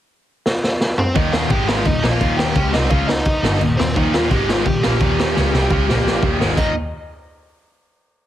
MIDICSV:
0, 0, Header, 1, 5, 480
1, 0, Start_track
1, 0, Key_signature, -3, "major"
1, 0, Tempo, 349854
1, 1582, Time_signature, 4, 2, 24, 8
1, 11345, End_track
2, 0, Start_track
2, 0, Title_t, "Lead electric guitar"
2, 0, Program_c, 0, 29
2, 1355, Note_on_c, 0, 60, 77
2, 1358, Note_on_c, 0, 72, 82
2, 1572, Note_off_c, 0, 72, 0
2, 1574, Note_off_c, 0, 60, 0
2, 1586, Note_on_c, 0, 75, 104
2, 1601, Note_on_c, 0, 63, 82
2, 1816, Note_off_c, 0, 63, 0
2, 1818, Note_on_c, 0, 77, 107
2, 1832, Note_off_c, 0, 75, 0
2, 1838, Note_on_c, 0, 65, 79
2, 2055, Note_off_c, 0, 65, 0
2, 2066, Note_off_c, 0, 77, 0
2, 2071, Note_on_c, 0, 79, 103
2, 2080, Note_on_c, 0, 67, 83
2, 2296, Note_off_c, 0, 67, 0
2, 2298, Note_off_c, 0, 79, 0
2, 2298, Note_on_c, 0, 77, 97
2, 2322, Note_on_c, 0, 65, 75
2, 2538, Note_off_c, 0, 65, 0
2, 2549, Note_off_c, 0, 77, 0
2, 2550, Note_on_c, 0, 75, 93
2, 2565, Note_on_c, 0, 63, 78
2, 2891, Note_off_c, 0, 63, 0
2, 2901, Note_on_c, 0, 77, 103
2, 2919, Note_off_c, 0, 75, 0
2, 2923, Note_on_c, 0, 65, 87
2, 3251, Note_off_c, 0, 65, 0
2, 3252, Note_off_c, 0, 77, 0
2, 3257, Note_on_c, 0, 79, 111
2, 3279, Note_on_c, 0, 67, 90
2, 3708, Note_off_c, 0, 79, 0
2, 3720, Note_off_c, 0, 67, 0
2, 3749, Note_on_c, 0, 75, 101
2, 3772, Note_on_c, 0, 63, 80
2, 3972, Note_off_c, 0, 75, 0
2, 3982, Note_on_c, 0, 77, 97
2, 3984, Note_off_c, 0, 63, 0
2, 3996, Note_on_c, 0, 65, 74
2, 4215, Note_off_c, 0, 65, 0
2, 4216, Note_off_c, 0, 77, 0
2, 4216, Note_on_c, 0, 75, 100
2, 4241, Note_on_c, 0, 63, 78
2, 4904, Note_off_c, 0, 63, 0
2, 4942, Note_off_c, 0, 75, 0
2, 5174, Note_on_c, 0, 72, 87
2, 5206, Note_on_c, 0, 60, 69
2, 5407, Note_on_c, 0, 75, 102
2, 5420, Note_off_c, 0, 60, 0
2, 5428, Note_off_c, 0, 72, 0
2, 5436, Note_on_c, 0, 63, 77
2, 5655, Note_off_c, 0, 63, 0
2, 5657, Note_off_c, 0, 75, 0
2, 5657, Note_on_c, 0, 77, 98
2, 5692, Note_on_c, 0, 65, 79
2, 5898, Note_off_c, 0, 77, 0
2, 5898, Note_on_c, 0, 79, 105
2, 5903, Note_off_c, 0, 65, 0
2, 5924, Note_on_c, 0, 67, 80
2, 6138, Note_off_c, 0, 67, 0
2, 6138, Note_off_c, 0, 79, 0
2, 6138, Note_on_c, 0, 77, 88
2, 6166, Note_on_c, 0, 65, 75
2, 6375, Note_off_c, 0, 77, 0
2, 6375, Note_on_c, 0, 79, 92
2, 6380, Note_off_c, 0, 65, 0
2, 6398, Note_on_c, 0, 67, 78
2, 8732, Note_off_c, 0, 67, 0
2, 8775, Note_off_c, 0, 79, 0
2, 9018, Note_on_c, 0, 75, 88
2, 9241, Note_off_c, 0, 75, 0
2, 11345, End_track
3, 0, Start_track
3, 0, Title_t, "Distorted electric guitar"
3, 0, Program_c, 1, 30
3, 1580, Note_on_c, 1, 39, 98
3, 1588, Note_on_c, 1, 46, 97
3, 1591, Note_on_c, 1, 51, 89
3, 2055, Note_off_c, 1, 39, 0
3, 2056, Note_off_c, 1, 51, 0
3, 2060, Note_off_c, 1, 46, 0
3, 2068, Note_on_c, 1, 44, 87
3, 2073, Note_on_c, 1, 51, 108
3, 2080, Note_on_c, 1, 56, 119
3, 2540, Note_off_c, 1, 44, 0
3, 2542, Note_off_c, 1, 51, 0
3, 2546, Note_off_c, 1, 56, 0
3, 2552, Note_on_c, 1, 39, 67
3, 2557, Note_on_c, 1, 46, 76
3, 2741, Note_off_c, 1, 39, 0
3, 2743, Note_off_c, 1, 46, 0
3, 2782, Note_on_c, 1, 46, 101
3, 2792, Note_on_c, 1, 53, 105
3, 2793, Note_on_c, 1, 58, 110
3, 3017, Note_off_c, 1, 46, 0
3, 3022, Note_off_c, 1, 53, 0
3, 3023, Note_off_c, 1, 58, 0
3, 3024, Note_on_c, 1, 39, 92
3, 3033, Note_on_c, 1, 46, 106
3, 3039, Note_on_c, 1, 51, 112
3, 3499, Note_off_c, 1, 39, 0
3, 3502, Note_off_c, 1, 46, 0
3, 3506, Note_off_c, 1, 51, 0
3, 3508, Note_on_c, 1, 49, 92
3, 3513, Note_on_c, 1, 56, 87
3, 3518, Note_on_c, 1, 61, 101
3, 3733, Note_off_c, 1, 49, 0
3, 3739, Note_on_c, 1, 48, 89
3, 3740, Note_off_c, 1, 56, 0
3, 3743, Note_off_c, 1, 61, 0
3, 3746, Note_on_c, 1, 55, 88
3, 3749, Note_on_c, 1, 60, 100
3, 3976, Note_off_c, 1, 48, 0
3, 3979, Note_off_c, 1, 55, 0
3, 3981, Note_off_c, 1, 60, 0
3, 3987, Note_on_c, 1, 49, 100
3, 3989, Note_on_c, 1, 56, 111
3, 3996, Note_on_c, 1, 61, 113
3, 4220, Note_off_c, 1, 49, 0
3, 4221, Note_off_c, 1, 56, 0
3, 4224, Note_off_c, 1, 61, 0
3, 4701, Note_on_c, 1, 43, 101
3, 4704, Note_on_c, 1, 50, 97
3, 4712, Note_on_c, 1, 55, 108
3, 4934, Note_off_c, 1, 43, 0
3, 4939, Note_off_c, 1, 50, 0
3, 4940, Note_on_c, 1, 39, 69
3, 4942, Note_off_c, 1, 55, 0
3, 4949, Note_on_c, 1, 46, 81
3, 5135, Note_off_c, 1, 39, 0
3, 5140, Note_off_c, 1, 46, 0
3, 5185, Note_on_c, 1, 39, 58
3, 5193, Note_on_c, 1, 46, 71
3, 5378, Note_off_c, 1, 39, 0
3, 5382, Note_off_c, 1, 46, 0
3, 5424, Note_on_c, 1, 39, 98
3, 5432, Note_on_c, 1, 46, 96
3, 5437, Note_on_c, 1, 51, 104
3, 5893, Note_off_c, 1, 51, 0
3, 5898, Note_off_c, 1, 39, 0
3, 5899, Note_off_c, 1, 46, 0
3, 5904, Note_on_c, 1, 44, 87
3, 5910, Note_on_c, 1, 51, 108
3, 5915, Note_on_c, 1, 56, 112
3, 6377, Note_off_c, 1, 44, 0
3, 6380, Note_off_c, 1, 51, 0
3, 6383, Note_off_c, 1, 56, 0
3, 6389, Note_on_c, 1, 39, 72
3, 6392, Note_on_c, 1, 46, 74
3, 6579, Note_off_c, 1, 39, 0
3, 6581, Note_off_c, 1, 46, 0
3, 6615, Note_on_c, 1, 46, 95
3, 6620, Note_on_c, 1, 53, 98
3, 6626, Note_on_c, 1, 58, 106
3, 6847, Note_off_c, 1, 46, 0
3, 6855, Note_off_c, 1, 53, 0
3, 6857, Note_on_c, 1, 39, 98
3, 6858, Note_off_c, 1, 58, 0
3, 6863, Note_on_c, 1, 46, 105
3, 6867, Note_on_c, 1, 51, 106
3, 7326, Note_off_c, 1, 46, 0
3, 7332, Note_off_c, 1, 39, 0
3, 7332, Note_on_c, 1, 49, 82
3, 7337, Note_off_c, 1, 51, 0
3, 7342, Note_on_c, 1, 56, 96
3, 7345, Note_on_c, 1, 61, 113
3, 7563, Note_off_c, 1, 49, 0
3, 7569, Note_on_c, 1, 48, 89
3, 7575, Note_off_c, 1, 56, 0
3, 7577, Note_off_c, 1, 61, 0
3, 7581, Note_on_c, 1, 55, 88
3, 7587, Note_on_c, 1, 60, 91
3, 7808, Note_off_c, 1, 48, 0
3, 7814, Note_off_c, 1, 55, 0
3, 7816, Note_on_c, 1, 49, 98
3, 7817, Note_off_c, 1, 60, 0
3, 7822, Note_on_c, 1, 56, 105
3, 7824, Note_on_c, 1, 61, 103
3, 8051, Note_off_c, 1, 49, 0
3, 8054, Note_off_c, 1, 56, 0
3, 8056, Note_off_c, 1, 61, 0
3, 8063, Note_on_c, 1, 46, 79
3, 8072, Note_on_c, 1, 53, 90
3, 8075, Note_on_c, 1, 58, 93
3, 8531, Note_off_c, 1, 46, 0
3, 8539, Note_off_c, 1, 53, 0
3, 8540, Note_off_c, 1, 58, 0
3, 8541, Note_on_c, 1, 39, 95
3, 8547, Note_on_c, 1, 46, 113
3, 8554, Note_on_c, 1, 51, 104
3, 8767, Note_off_c, 1, 51, 0
3, 8771, Note_off_c, 1, 46, 0
3, 8773, Note_off_c, 1, 39, 0
3, 8776, Note_on_c, 1, 44, 93
3, 8783, Note_on_c, 1, 51, 91
3, 8788, Note_on_c, 1, 56, 103
3, 9010, Note_off_c, 1, 44, 0
3, 9010, Note_on_c, 1, 39, 90
3, 9014, Note_off_c, 1, 51, 0
3, 9016, Note_off_c, 1, 56, 0
3, 9024, Note_on_c, 1, 46, 88
3, 9030, Note_on_c, 1, 51, 101
3, 9206, Note_off_c, 1, 39, 0
3, 9214, Note_off_c, 1, 46, 0
3, 9216, Note_off_c, 1, 51, 0
3, 11345, End_track
4, 0, Start_track
4, 0, Title_t, "Double bass"
4, 0, Program_c, 2, 43
4, 1584, Note_on_c, 2, 39, 93
4, 2031, Note_off_c, 2, 39, 0
4, 2061, Note_on_c, 2, 32, 101
4, 2510, Note_off_c, 2, 32, 0
4, 2546, Note_on_c, 2, 39, 80
4, 2769, Note_off_c, 2, 39, 0
4, 2790, Note_on_c, 2, 34, 100
4, 3011, Note_off_c, 2, 34, 0
4, 3026, Note_on_c, 2, 39, 97
4, 3473, Note_off_c, 2, 39, 0
4, 3509, Note_on_c, 2, 37, 96
4, 3732, Note_off_c, 2, 37, 0
4, 3766, Note_on_c, 2, 36, 100
4, 3975, Note_off_c, 2, 36, 0
4, 3983, Note_on_c, 2, 37, 97
4, 4208, Note_off_c, 2, 37, 0
4, 4707, Note_on_c, 2, 31, 96
4, 4930, Note_off_c, 2, 31, 0
4, 4954, Note_on_c, 2, 39, 80
4, 5174, Note_off_c, 2, 39, 0
4, 5202, Note_on_c, 2, 39, 78
4, 5418, Note_off_c, 2, 39, 0
4, 5436, Note_on_c, 2, 39, 96
4, 5878, Note_off_c, 2, 39, 0
4, 5916, Note_on_c, 2, 32, 99
4, 6357, Note_off_c, 2, 32, 0
4, 6388, Note_on_c, 2, 39, 85
4, 6610, Note_off_c, 2, 39, 0
4, 6642, Note_on_c, 2, 34, 97
4, 6857, Note_off_c, 2, 34, 0
4, 6872, Note_on_c, 2, 39, 90
4, 7314, Note_off_c, 2, 39, 0
4, 7358, Note_on_c, 2, 37, 90
4, 7574, Note_off_c, 2, 37, 0
4, 7596, Note_on_c, 2, 36, 99
4, 7813, Note_off_c, 2, 36, 0
4, 7830, Note_on_c, 2, 37, 102
4, 8049, Note_off_c, 2, 37, 0
4, 8068, Note_on_c, 2, 34, 102
4, 8511, Note_off_c, 2, 34, 0
4, 8544, Note_on_c, 2, 39, 100
4, 8765, Note_off_c, 2, 39, 0
4, 8771, Note_on_c, 2, 32, 94
4, 8998, Note_off_c, 2, 32, 0
4, 9016, Note_on_c, 2, 39, 84
4, 9240, Note_off_c, 2, 39, 0
4, 11345, End_track
5, 0, Start_track
5, 0, Title_t, "Drums"
5, 628, Note_on_c, 9, 38, 71
5, 765, Note_off_c, 9, 38, 0
5, 874, Note_on_c, 9, 38, 77
5, 1011, Note_off_c, 9, 38, 0
5, 1107, Note_on_c, 9, 38, 92
5, 1245, Note_off_c, 9, 38, 0
5, 1342, Note_on_c, 9, 45, 97
5, 1479, Note_off_c, 9, 45, 0
5, 1587, Note_on_c, 9, 49, 60
5, 1588, Note_on_c, 9, 36, 110
5, 1724, Note_off_c, 9, 49, 0
5, 1725, Note_off_c, 9, 36, 0
5, 1828, Note_on_c, 9, 38, 118
5, 1965, Note_off_c, 9, 38, 0
5, 2057, Note_on_c, 9, 49, 67
5, 2066, Note_on_c, 9, 36, 112
5, 2195, Note_off_c, 9, 49, 0
5, 2203, Note_off_c, 9, 36, 0
5, 2312, Note_on_c, 9, 38, 116
5, 2449, Note_off_c, 9, 38, 0
5, 2542, Note_on_c, 9, 49, 63
5, 2549, Note_on_c, 9, 36, 91
5, 2680, Note_off_c, 9, 49, 0
5, 2686, Note_off_c, 9, 36, 0
5, 2794, Note_on_c, 9, 38, 106
5, 2931, Note_off_c, 9, 38, 0
5, 3029, Note_on_c, 9, 49, 69
5, 3031, Note_on_c, 9, 36, 106
5, 3166, Note_off_c, 9, 49, 0
5, 3168, Note_off_c, 9, 36, 0
5, 3276, Note_on_c, 9, 38, 116
5, 3414, Note_off_c, 9, 38, 0
5, 3505, Note_on_c, 9, 49, 63
5, 3510, Note_on_c, 9, 36, 110
5, 3642, Note_off_c, 9, 49, 0
5, 3647, Note_off_c, 9, 36, 0
5, 3757, Note_on_c, 9, 38, 123
5, 3894, Note_off_c, 9, 38, 0
5, 3982, Note_on_c, 9, 49, 67
5, 3990, Note_on_c, 9, 36, 110
5, 4119, Note_off_c, 9, 49, 0
5, 4127, Note_off_c, 9, 36, 0
5, 4236, Note_on_c, 9, 38, 107
5, 4374, Note_off_c, 9, 38, 0
5, 4464, Note_on_c, 9, 49, 61
5, 4472, Note_on_c, 9, 36, 107
5, 4601, Note_off_c, 9, 49, 0
5, 4609, Note_off_c, 9, 36, 0
5, 4727, Note_on_c, 9, 38, 106
5, 4864, Note_off_c, 9, 38, 0
5, 4953, Note_on_c, 9, 49, 62
5, 5090, Note_off_c, 9, 49, 0
5, 5206, Note_on_c, 9, 38, 117
5, 5344, Note_off_c, 9, 38, 0
5, 5433, Note_on_c, 9, 49, 61
5, 5436, Note_on_c, 9, 36, 104
5, 5570, Note_off_c, 9, 49, 0
5, 5573, Note_off_c, 9, 36, 0
5, 5680, Note_on_c, 9, 38, 118
5, 5817, Note_off_c, 9, 38, 0
5, 5911, Note_on_c, 9, 49, 63
5, 5912, Note_on_c, 9, 36, 104
5, 6049, Note_off_c, 9, 36, 0
5, 6049, Note_off_c, 9, 49, 0
5, 6162, Note_on_c, 9, 38, 101
5, 6299, Note_off_c, 9, 38, 0
5, 6387, Note_on_c, 9, 49, 65
5, 6391, Note_on_c, 9, 36, 91
5, 6524, Note_off_c, 9, 49, 0
5, 6528, Note_off_c, 9, 36, 0
5, 6632, Note_on_c, 9, 38, 113
5, 6769, Note_off_c, 9, 38, 0
5, 6869, Note_on_c, 9, 49, 67
5, 6870, Note_on_c, 9, 36, 108
5, 7006, Note_off_c, 9, 49, 0
5, 7007, Note_off_c, 9, 36, 0
5, 7126, Note_on_c, 9, 38, 114
5, 7263, Note_off_c, 9, 38, 0
5, 7359, Note_on_c, 9, 38, 68
5, 7496, Note_off_c, 9, 38, 0
5, 7602, Note_on_c, 9, 38, 67
5, 7739, Note_off_c, 9, 38, 0
5, 7828, Note_on_c, 9, 36, 115
5, 7966, Note_off_c, 9, 36, 0
5, 8086, Note_on_c, 9, 38, 71
5, 8223, Note_off_c, 9, 38, 0
5, 8330, Note_on_c, 9, 38, 89
5, 8467, Note_off_c, 9, 38, 0
5, 8543, Note_on_c, 9, 36, 103
5, 8680, Note_off_c, 9, 36, 0
5, 8794, Note_on_c, 9, 38, 104
5, 8932, Note_off_c, 9, 38, 0
5, 9020, Note_on_c, 9, 36, 104
5, 9023, Note_on_c, 9, 57, 90
5, 9157, Note_off_c, 9, 36, 0
5, 9160, Note_off_c, 9, 57, 0
5, 11345, End_track
0, 0, End_of_file